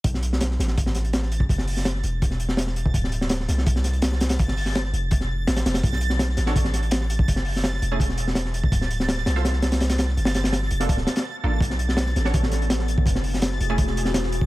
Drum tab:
HH |x-x-x-x-x-xxx-x-|x-o-x-x-x-x-x-x-|x-x-x-x-x-xxx-xx|x-o-x-x-x---xxxx|
SD |-o-ooooo-oo-oo--|-o-ooo---o-ooo--|-o-ooooo-oo-oooo|-o-ooo---o--oooo|
BD |o-------o------o|o-------o------o|o-------o-------|o-------o-------|

HH |x-x-x-x-x-xxx-x-|x-o-x-x-x-x-x-x-|x-x-x-x-x-xxxxx-|xxxxx-xxx-xx----|
SD |-o-ooooo-oo-oo--|-o-ooo---o-ooo--|-o-ooooooooooooo|-ooooo-o-ooo----|
BD |o-------o------o|o-------o------o|o---------------|--------o-------|

HH |x-x-x-x-x-xxx-x-|x-o-x-x-x-x-x-x-|
SD |-o-ooooo-oo-oo--|-o-ooo---o-ooo--|
BD |o-------o------o|o-------o------o|